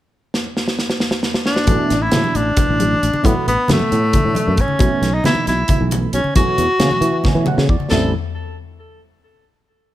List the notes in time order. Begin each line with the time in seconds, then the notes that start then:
0.34 snare
0.57 snare
0.68 snare
0.79 snare
0.90 snare
1.00 snare
1.11 snare
1.23 snare
1.34 snare
1.46 D4, snare
1.56 snare
1.66 A1 B2 E3 A3 D4, kick, closed hi-hat, high conga, low conga
1.90 A1, snare, closed hi-hat, low conga
2.02 E4
2.12 A2 B2 E3 A3 D4, snare, closed hi-hat, low conga
2.24 high conga
2.35 A1 D4, closed hi-hat
2.57 B2 E3 A3 D4, muted fretless electric bass stroke, kick, closed hi-hat, low conga
2.69 A1
2.80 closed hi-hat, high conga
2.91 low conga
3.03 A1, closed hi-hat
3.13 low conga
3.22 A2 B2 E3 A3 B3, kick, closed hi-hat, high conga, low conga
3.36 muted fretless electric bass stroke
3.46 A1 B3, closed hi-hat, low conga
3.68 F#2 B2 E3 A3 B3, snare, closed hi-hat, low conga
3.72 A3
3.79 muted fretless electric bass stroke, high conga
3.92 A2, closed hi-hat
4.12 B2 E3 A3 D4, kick, closed hi-hat, low conga
4.25 A2
4.35 closed hi-hat, high conga
4.46 F#2, low conga
4.57 A1 C#4, kick, closed hi-hat
4.68 low conga
4.79 B1 B2 E3 A3 C#4, kick, closed hi-hat, high conga, low conga
5.02 B1, snare, closed hi-hat, low conga
5.14 D#4
5.24 B2 E3 A3 D#4 E4, snare, closed hi-hat, low conga
5.35 high conga
5.47 B1 E4, snare, closed hi-hat
5.68 B2 E3 A3 E4, muted fretless electric bass stroke, kick, closed hi-hat, low conga
5.81 B1
5.91 closed hi-hat, high conga
6.03 low conga
6.13 B1 C#4, closed hi-hat
6.24 muted fretless electric bass stroke, low conga
6.35 E2 B2 E3 A3 C#4 F#4, kick, closed hi-hat, high conga
6.47 muted fretless electric bass stroke
6.58 E2, closed hi-hat
6.79 B2 C#3 E3 A3 C#4, snare, closed hi-hat, low conga
6.91 muted fretless electric bass stroke, high conga
7.01 E3, closed hi-hat
7.12 low conga
7.24 B2 E3 A3 C#4, kick, snare, low conga
7.35 E3
7.46 F#5, mid tom, high conga
7.57 C#3, snare
7.69 E2 D5, kick
7.80 muted fretless electric bass stroke, low conga
7.90 A1 D3 G3 C4 E4 A4, snare, floor tom, crash, high conga